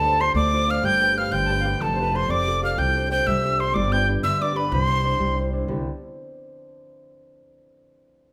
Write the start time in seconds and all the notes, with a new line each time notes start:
Already playing: D2 D3 G4 A4 B4 A5
0.04 D4 F4 C5
0.19 D4 F4 C5 C6
0.35 D2 A3 D5 D6
0.53 D4 F4 C5
0.67 D4 F4 C5 F5 F6
0.83 G1 G3 G5 G6
1.00 D4 G4 B4 G5
1.16 D4 G4 B4 F5 F6
1.31 G1 D3 G5 G6
1.46 D4 G4 B4 G5 A5
1.60 D4 F5
1.65 G4 B4 G5
1.80 F1 F3 A4 A5
1.94 C5
1.98 F4 G4 A4 B4
2.13 F4 G4 A4 C5 C6
2.28 F1 C3 D5 D6
2.47 F4 G4 A4
2.62 F4 G4 A4 F5 F6
2.78 C2 C3 G5 G6
2.96 D4 G4 C5
3.10 D4 G4 C5 G5 G6
3.27 C2 G3 E5 E6
3.44 D4 G4 C5
3.59 D4 G4 C5 C6
3.74 G1 G3 D5 D6
3.92 D4 G4 B4 G5 G6
4.08 D4 G4 B4
4.23 G1 D3 E5 E6
4.41 D4 G4 B4 D5 D6
4.55 D4 G4 B4 B5
4.71 C2 C3 C5 B5
4.83 C6
4.89 D4 E4 C5
5.04 D4 E4 C5
5.20 C2 G3
5.36 D4 E4
5.41 C5
5.53 D4 E4 C5
5.67 C2 G2 D3 C4 E4 G4